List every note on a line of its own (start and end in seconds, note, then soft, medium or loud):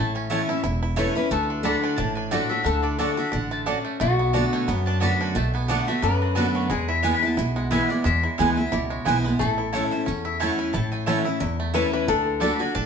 0.00 0.39 A1 medium
0.00 0.61 A2 medium
0.00 0.97 A3 medium
0.00 0.27 E4 medium
0.00 0.94 A4 loud
0.00 0.15 A5 loud
0.15 0.61 C#4 medium
0.15 0.30 G#5 loud
0.30 0.48 E3 medium
0.30 0.40 A3 medium
0.30 0.48 A3 medium
0.30 0.49 C#4 medium
0.30 0.48 E4 medium
0.30 0.41 E4 medium
0.30 0.48 E4 medium
0.30 0.41 C#5 loud
0.30 0.49 F#5 medium
0.30 0.41 A5 loud
0.49 0.64 C#4 medium
0.49 0.63 E4 medium
0.49 0.62 E4 medium
0.49 1.27 E5 medium
0.64 1.06 E1 medium
0.64 1.28 E2 medium
0.64 0.81 E4 medium
0.83 1.15 E4 medium
0.96 1.15 E3 medium
0.96 1.07 A3 medium
0.96 1.15 A3 medium
0.96 1.31 A3 medium
0.96 1.16 C#4 medium
0.96 1.07 E4 medium
0.96 1.14 E4 loud
0.96 1.16 B4 medium
0.96 1.07 C#5 loud
0.96 1.08 A5 medium
1.15 1.31 C#4 soft
1.15 1.30 E4 medium
1.15 1.31 E4 medium
1.15 1.31 B4 medium
1.31 1.73 D2 loud
1.31 1.62 D3 medium
1.31 2.31 A3 medium
1.31 2.64 A4 loud
1.50 1.64 D4 medium
1.63 1.96 D3 medium
1.63 1.97 A3 medium
1.63 1.75 A3 medium
1.63 1.83 D4 medium
1.63 1.97 D4 loud
1.63 1.75 F#4 medium
1.63 1.98 F#4 medium
1.63 1.75 D5 medium
1.63 1.75 A5 loud
1.63 1.82 B5 medium
1.82 1.98 D4 medium
1.82 1.96 G#5 medium
1.96 2.40 A1 medium
1.96 2.62 A2 loud
1.96 2.17 D4 medium
1.96 2.15 A5 loud
2.15 2.50 D4 medium
2.15 2.30 G#5 loud
2.31 2.50 D3 medium
2.31 2.63 A3 medium
2.31 2.42 A3 medium
2.31 2.50 A3 medium
2.31 2.50 D4 medium
2.31 2.42 F#4 loud
2.31 2.50 F#4 loud
2.31 2.42 D5 loud
2.31 2.49 F#5 medium
2.31 2.43 A5 loud
2.49 2.82 D4 medium
2.49 2.65 F#4 medium
2.49 2.63 E5 loud
2.53 2.67 D4 soft
2.64 3.07 D2 medium
2.64 2.98 D3 medium
2.64 3.14 A3 medium
2.64 3.82 A4 loud
2.64 2.83 F#5 loud
2.83 2.97 D4 medium
2.83 2.98 D5 medium
2.99 3.17 D3 medium
2.99 3.09 A3 medium
2.99 3.18 A3 medium
2.99 3.16 D4 medium
2.99 3.18 D4 medium
2.99 3.10 F#4 medium
2.99 3.16 F#4 medium
2.99 3.17 C#5 medium
2.99 3.10 D5 medium
2.99 3.10 A5 loud
3.17 3.31 D4 medium
3.17 3.33 D4 medium
3.17 3.32 F#4 medium
3.17 3.32 E5 medium
3.32 3.75 A1 medium
3.32 3.65 D3 medium
3.32 3.65 D4 medium
3.32 3.51 F#5 medium
3.51 3.83 A3 medium
3.51 3.61 A5 loud
3.66 3.77 A3 loud
3.66 3.99 C#4 medium
3.66 4.00 D4 medium
3.66 3.77 F#4 loud
3.66 3.77 D5 loud
3.66 3.77 A5 loud
3.85 3.99 A3 medium
4.00 4.42 B1 medium
4.00 4.65 B2 loud
4.00 4.53 A3 medium
4.00 6.09 F#4 medium
4.19 4.68 B3 medium
4.33 4.66 D3 medium
4.33 4.67 A3 medium
4.33 4.44 B3 medium
4.33 4.67 B3 medium
4.33 4.83 D4 medium
4.33 4.44 F#4 medium
4.33 4.68 F#4 medium
4.33 4.44 D5 loud
4.33 4.44 A5 loud
4.53 4.99 A3 medium
4.53 4.66 G#5 medium
4.67 5.10 F#2 medium
4.67 5.33 F#2 loud
4.67 5.39 B3 medium
4.67 4.85 F#5 medium
4.86 5.01 D4 medium
4.86 5.00 A5 loud
5.00 5.34 D3 medium
5.00 5.34 A3 medium
5.00 5.11 B3 loud
5.00 5.34 B3 medium
5.00 5.20 D4 medium
5.00 5.11 F#4 loud
5.00 5.35 F#4 loud
5.00 5.12 D5 loud
5.00 5.12 A5 loud
5.00 5.19 B5 loud
5.21 5.66 D4 medium
5.21 5.35 G#5 loud
5.35 5.77 B1 medium
5.35 5.99 B2 medium
5.35 5.84 A3 medium
5.35 5.53 A5 loud
5.54 6.02 B3 medium
5.54 5.68 G#5 medium
5.68 5.87 D3 medium
5.68 5.87 A3 medium
5.68 5.79 B3 loud
5.68 5.88 B3 medium
5.68 6.18 D4 medium
5.68 5.79 F#4 loud
5.68 5.88 F#4 loud
5.68 5.79 D5 loud
5.68 5.87 F#5 medium
5.68 5.79 A5 loud
5.88 6.33 A3 medium
5.88 6.04 B3 medium
5.88 6.03 F#4 medium
5.88 6.02 E5 loud
6.02 6.44 F#2 medium
6.02 6.67 F#2 loud
6.02 7.42 B3 medium
6.02 6.72 B4 loud
6.02 6.20 D5 medium
6.22 6.35 D4 medium
6.22 6.36 F#4 medium
6.35 6.68 D3 medium
6.35 6.69 A3 loud
6.35 6.46 B3 loud
6.35 6.69 B3 medium
6.35 6.54 D4 medium
6.35 6.46 F#4 loud
6.35 6.70 F#4 medium
6.35 6.55 A4 medium
6.35 6.46 D5 loud
6.35 6.46 A5 loud
6.55 6.70 D4 medium
6.55 6.69 C#5 loud
6.70 7.12 E2 loud
6.70 7.35 E2 medium
6.70 7.03 G#3 medium
6.70 9.20 G#4 loud
6.70 6.89 B4 medium
6.88 7.22 E4 medium
6.88 7.03 E5 medium
7.02 7.22 E3 medium
7.02 7.52 G#3 medium
7.02 7.22 G#3 loud
7.02 7.13 B3 loud
7.02 7.22 B3 loud
7.02 7.13 E4 medium
7.02 7.22 E4 loud
7.02 7.14 B4 medium
7.02 7.14 G#5 medium
7.02 7.14 G#5 loud
7.14 7.25 B5 loud
7.23 7.38 B3 medium
7.23 7.37 E4 medium
7.23 7.37 A5 medium
7.37 7.79 B1 medium
7.37 8.02 B2 loud
7.37 8.23 E4 medium
7.37 7.56 G#5 medium
7.56 7.88 G#3 medium
7.56 7.70 F#5 medium
7.71 7.89 E3 medium
7.71 7.89 G#3 medium
7.71 7.81 B3 medium
7.71 8.20 B3 medium
7.71 7.90 B3 medium
7.71 7.81 E4 loud
7.71 7.89 E4 loud
7.71 7.81 B4 loud
7.71 7.89 E5 medium
7.71 7.81 G#5 loud
7.89 8.03 G#3 medium
7.89 8.05 B3 medium
7.89 8.04 E4 medium
7.89 8.04 D5 medium
8.04 8.26 E2 loud
8.04 8.70 E2 medium
8.04 8.37 G#3 medium
8.04 8.23 E5 loud
8.23 8.57 E4 medium
8.23 8.38 G#4 medium
8.38 8.67 D2 medium
8.38 8.57 E3 medium
8.38 8.87 G#3 medium
8.38 8.57 G#3 loud
8.38 8.48 B3 loud
8.38 8.57 B3 loud
8.38 8.48 E4 loud
8.38 8.57 E4 medium
8.38 8.49 B4 loud
8.38 8.57 B4 medium
8.38 8.49 G#5 loud
8.57 8.73 B3 soft
8.57 8.72 E4 medium
8.57 8.72 E5 medium
8.72 9.01 C#2 medium
8.72 9.37 B2 loud
8.72 9.57 E4 medium
8.72 8.90 D5 medium
8.90 9.23 G#3 medium
8.90 9.05 C#5 medium
9.05 9.34 B1 medium
9.05 9.24 E3 medium
9.05 9.25 G#3 medium
9.05 9.15 B3 medium
9.05 9.39 B3 medium
9.05 9.25 B3 medium
9.05 9.16 E4 loud
9.05 9.25 E4 loud
9.05 9.16 B4 loud
9.05 9.24 C5 medium
9.05 9.16 G#5 loud
9.24 9.39 G#3 medium
9.24 9.41 B3 medium
9.24 9.39 E4 medium
9.24 9.39 B4 medium
9.39 9.82 A1 medium
9.39 10.04 A2 medium
9.39 10.79 A3 medium
9.39 11.71 A4 loud
9.39 9.51 C#5 loud
9.58 9.72 E4 medium
9.73 9.91 E3 medium
9.73 9.83 A3 loud
9.73 9.92 A3 medium
9.73 9.92 C#4 medium
9.73 9.90 E4 medium
9.73 9.83 E4 loud
9.73 9.91 E4 loud
9.73 9.83 C#5 loud
9.73 9.83 A5 loud
9.91 10.07 C#4 medium
9.91 10.24 E4 medium
9.91 10.06 E4 medium
9.91 10.05 C5 medium
10.06 10.49 E2 medium
10.06 10.71 E2 medium
10.06 10.39 C#4 medium
10.06 10.24 C#5 medium
10.25 10.58 E4 medium
10.25 10.39 E5 loud
10.40 10.73 E3 medium
10.40 10.50 A3 loud
10.40 10.73 A3 medium
10.40 10.89 C#4 medium
10.40 10.73 C#4 medium
10.40 10.50 E4 loud
10.40 10.74 E4 medium
10.40 10.50 C#5 loud
10.40 10.58 F#5 medium
10.40 10.50 A5 loud
10.58 10.72 E4 medium
10.58 10.72 G#5 loud
10.73 11.16 A1 medium
10.73 11.38 A2 loud
10.73 11.22 E4 medium
10.73 10.91 A5 loud
10.92 11.59 A3 medium
10.92 11.06 G#5 loud
11.06 11.25 E3 loud
11.06 11.17 A3 loud
11.06 11.25 A3 medium
11.06 11.56 C#4 medium
11.06 11.26 C#4 medium
11.06 11.17 E4 loud
11.06 11.25 E4 medium
11.06 11.17 C#5 loud
11.06 11.25 F#5 medium
11.06 11.17 A5 loud
11.25 11.41 C#4 medium
11.25 11.39 E4 medium
11.25 11.40 E4 medium
11.25 12.03 E5 loud
11.40 12.05 E2 loud
11.40 11.83 E2 medium
11.40 11.73 E4 medium
11.60 12.86 A3 medium
11.74 12.06 E3 medium
11.74 11.84 A3 medium
11.74 12.07 A3 medium
11.74 12.07 C#4 loud
11.74 11.84 E4 loud
11.74 11.92 E4 medium
11.74 12.07 E4 medium
11.74 11.92 B4 loud
11.74 11.85 C#5 loud
11.74 11.85 A5 loud
11.93 12.08 E4 medium
11.93 12.09 B4 loud
12.08 12.50 D2 medium
12.08 12.40 D3 medium
12.08 12.42 D4 medium
12.08 12.86 A4 medium
12.40 12.60 D3 medium
12.40 12.51 A3 loud
12.40 12.60 A3 loud
12.40 12.60 D4 medium
12.40 12.51 F#4 loud
12.40 12.58 F#4 medium
12.40 12.51 D5 loud
12.40 12.52 A5 loud
12.40 12.60 B5 medium
12.59 12.75 D4 medium
12.59 12.75 D4 soft
12.59 12.74 F#4 medium
12.59 12.74 G#5 loud
12.74 12.86 A1 medium
12.74 12.86 A2 loud
12.74 12.86 D4 medium
12.74 12.86 A5 loud